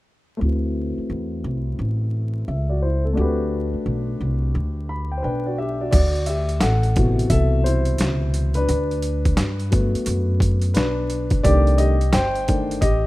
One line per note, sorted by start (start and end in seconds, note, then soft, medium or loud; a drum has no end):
0.37 3.11 A3 medium
0.37 2.43 C4 medium
0.37 2.44 E4 medium
0.41 0.95 D2 medium
0.41 2.45 F#4 medium
0.45 2.46 B4 medium
0.98 muted upright bass stroke soft
1.10 1.43 E2 medium
1.44 1.77 C2 medium
1.79 2.44 A1 medium
2.48 3.13 C#2 medium
2.48 2.69 E5 medium
2.69 2.82 F#4 soft
2.69 2.81 D5 medium
2.82 3.04 E4 medium
2.82 3.03 C5 medium
3.05 3.38 C4 soft
3.05 3.37 A4 medium
3.13 5.87 A3 medium
3.13 5.19 D4 medium
3.13 5.20 F#4 medium
3.17 3.71 D2 medium
3.17 5.21 G4 medium
3.21 5.21 B4 medium
3.74 muted upright bass stroke soft
3.86 4.18 B1 medium
4.21 4.53 C2 medium
4.55 5.20 D2 medium
4.89 5.10 B5 medium
5.12 5.22 G5 medium
5.18 5.23 C5 medium
5.22 5.89 B1 medium
5.22 5.89 D4 medium
5.22 5.45 B4 medium
5.22 5.56 G5 medium
5.46 5.58 F#4 medium
5.46 5.58 D5 medium
5.58 5.80 G4 medium
5.58 5.90 E5 medium
5.81 5.92 F#4 soft
5.81 5.90 D5 medium
5.91 6.58 D2 loud
5.91 6.25 F#4 medium
5.91 6.24 D5 medium
5.91 kick loud
5.91 closed hi-hat medium
5.91 crash medium
6.15 closed hi-hat soft
6.26 6.60 G4 medium
6.26 6.62 E5 medium
6.26 closed hi-hat medium
6.49 closed hi-hat soft
6.60 7.27 A1 medium
6.60 7.27 A4 medium
6.60 7.32 F#5 medium
6.60 snare loud
6.60 closed hi-hat medium
6.83 closed hi-hat soft
6.96 8.65 B2 medium
6.96 8.64 C3 medium
6.96 8.65 E3 soft
6.96 8.65 F#3 soft
6.96 kick loud
6.96 closed hi-hat medium
7.19 closed hi-hat soft
7.30 7.96 C2 medium
7.30 7.63 A4 medium
7.30 7.62 E5 medium
7.30 kick medium
7.30 closed hi-hat medium
7.64 8.53 E4 medium
7.64 8.58 C5 medium
7.64 closed hi-hat medium
7.85 closed hi-hat soft
7.98 8.65 C#2 medium
7.98 snare medium
7.98 closed hi-hat medium
8.34 closed hi-hat medium
8.54 10.59 D4 medium
8.54 10.58 B4 medium
8.54 closed hi-hat soft
8.69 9.34 D2 medium
8.69 closed hi-hat medium
8.91 closed hi-hat soft
9.02 closed hi-hat medium
9.25 kick medium
9.25 closed hi-hat soft
9.37 9.91 G2 medium
9.37 snare medium
9.37 closed hi-hat medium
9.60 closed hi-hat soft
9.71 10.71 F#3 medium
9.71 10.71 A3 soft
9.71 10.71 B3 medium
9.71 kick loud
9.71 closed hi-hat medium
9.95 muted upright bass stroke soft
9.95 closed hi-hat medium
10.06 10.72 F#2 medium
10.06 closed hi-hat medium
10.40 kick medium
10.40 closed hi-hat medium
10.62 closed hi-hat medium
10.74 11.41 B1 medium
10.74 11.41 D4 medium
10.74 11.46 B4 medium
10.74 snare loud
10.74 closed hi-hat medium
11.10 closed hi-hat medium
11.30 kick medium
11.30 closed hi-hat soft
11.43 12.10 C2 loud
11.43 11.94 D#3 medium
11.43 11.94 A3 medium
11.43 11.95 D4 medium
11.43 11.77 G4 medium
11.43 11.79 D5 loud
11.43 kick loud
11.43 closed hi-hat medium
11.67 closed hi-hat soft
11.78 12.11 G4 medium
11.78 12.14 D#5 medium
11.78 closed hi-hat medium
12.01 closed hi-hat soft
12.13 12.79 G1 medium
12.13 12.79 C5 medium
12.13 12.78 G5 medium
12.13 snare loud
12.13 closed hi-hat medium
12.35 closed hi-hat soft
12.48 12.79 D#3 soft
12.48 12.79 A3 soft
12.48 12.79 D4 medium
12.48 kick medium
12.48 closed hi-hat medium
12.71 closed hi-hat medium
12.81 13.07 A1 medium
12.81 13.07 G4 medium
12.81 13.07 D#5 medium
12.81 kick medium
12.81 closed hi-hat medium